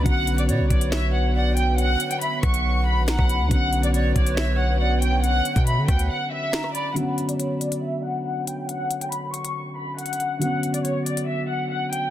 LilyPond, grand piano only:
\new Staff \with { instrumentName = "Grand piano" } { \clef bass \time 4/4 \key b \minor \tempo 4 = 139 <d fis b cis'>1~ | <d fis b cis'>1 | <d fis b cis'>1~ | <d fis b cis'>1 |
<d fis b cis'>1~ | <d fis b cis'>1 | <d fis b cis'>1 | }